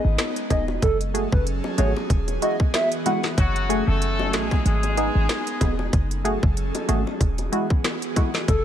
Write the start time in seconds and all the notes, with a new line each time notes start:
Already playing: G#3 B3 D#4
0.05 G#1
0.18 cross-stick, snare, closed hi-hat, high bongo
0.36 closed hi-hat
0.50 E1 B3 D#4 G#4 D#5, kick, closed hi-hat, low bongo
0.68 high bongo
0.82 F#1 F#3 C#4 G#4 A4, kick, closed hi-hat
1.01 closed hi-hat
1.14 A3 F#4 G#4, closed hi-hat
1.32 F#1 B4, kick
1.47 closed hi-hat
1.64 high bongo
1.78 G#1 A3 F#4 G#4 C#5, closed hi-hat, low bongo
1.97 high bongo
2.10 E1 E3 B3 F#4, kick, closed hi-hat
2.28 closed hi-hat, high bongo
2.42 G#3 E4 F#4 D#5, closed hi-hat
2.60 kick
2.74 E5, cross-stick, snare, closed hi-hat, high bongo
2.92 closed hi-hat
3.06 G#3 E4 F#4 F#5, closed hi-hat, low bongo
3.23 snare, high bongo
3.37 F#1 F#3 A3 C#4 F#4 G#5, kick, closed hi-hat
3.56 closed hi-hat
3.69 A3 F#4 G#4, closed hi-hat
3.87 F#1 A3 A4
4.02 closed hi-hat
4.19 high bongo
4.33 A1 G#3 A3 F#4 G#4 A4, cross-stick, snare, closed hi-hat, low bongo
4.51 kick, high bongo
4.65 G#1 G#3 B3 D#4 G#4, closed hi-hat
4.83 closed hi-hat, high bongo
4.97 B3 D#4 G#4, closed hi-hat
5.15 G#1
5.29 cross-stick, snare, closed hi-hat, high bongo
5.47 closed hi-hat
5.61 E1 B3 D#4 G#4, kick, closed hi-hat, low bongo
5.79 high bongo
5.93 F#1 F#3 C#4 G#4 A4, kick, closed hi-hat
6.11 closed hi-hat
6.24 A3 F#4 G#4, closed hi-hat
6.43 F#1, kick
6.57 closed hi-hat
6.75 closed hi-hat, high bongo
6.89 G#1 A3 F#4 G#4, closed hi-hat, high bongo, low bongo
7.07 high bongo
7.21 E1 E3 B3 F#4 G#4, kick, closed hi-hat
7.38 closed hi-hat, high bongo
7.52 G#3 E4 F#4, closed hi-hat
7.70 kick
7.84 cross-stick, snare, closed hi-hat, high bongo
8.02 closed hi-hat
8.16 G#3 E4 F#4, kick, closed hi-hat, low bongo
8.34 snare, high bongo
8.48 F#1 F#3 C#4 A4, kick, closed hi-hat